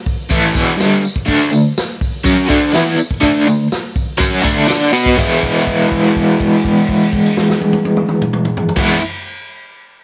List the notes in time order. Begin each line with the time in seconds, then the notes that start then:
0.06 kick, open hi-hat, tambourine
0.29 A2 E3 A3, kick, open hi-hat, tambourine
0.54 E2 B2 E3, kick, open hi-hat, tambourine
0.77 G2 D3 G3, snare, open hi-hat, tambourine
1.02 muted overdriven electric guitar stroke, open hi-hat, tambourine
1.16 kick
1.25 D3 A3 D4, kick, open hi-hat, tambourine
1.51 D3 A3, open hi-hat, tambourine
1.77 snare, open hi-hat, tambourine
2.01 kick, open hi-hat, tambourine
2.24 F#3 C#4 F#4, kick, open hi-hat, tambourine
2.49 D3 A3 D4, kick, open hi-hat, tambourine
2.74 E3 B3 E4, snare, open hi-hat, tambourine
2.98 muted overdriven electric guitar stroke, open hi-hat, tambourine
3.11 kick
3.21 D3 A3 D4, kick, open hi-hat, tambourine
3.47 D3 A3, open hi-hat, tambourine
3.72 snare, open hi-hat, tambourine
3.96 kick, open hi-hat, tambourine
4.18 F#3 C#4 F#4, kick, open hi-hat, tambourine
4.42 D3 A3 D4, kick, open hi-hat, tambourine
4.68 D4 A4 D5, snare, open hi-hat, tambourine
4.93 B3 F#4 B4, open hi-hat, tambourine
5.06 kick
5.16 E3 G#3 B3 E4, kick, crash, tambourine
5.43 kick, crash
5.56 crash
5.67 kick, crash
5.79 crash
5.92 kick, crash
6.05 crash
6.16 kick, crash
6.29 crash
6.40 kick, crash
6.53 crash
6.65 kick, crash
6.77 crash
6.89 kick, crash
7.01 crash
7.13 kick, crash
7.26 crash
7.37 snare
7.50 snare
7.61 high tom
7.73 high tom
7.85 high tom
7.97 mid tom
8.09 mid tom
8.22 mid tom
8.33 mid tom
8.45 mid tom
8.57 floor tom
8.69 floor tom
8.76 E3 G#3 B3, kick, snare, crash
8.81 E4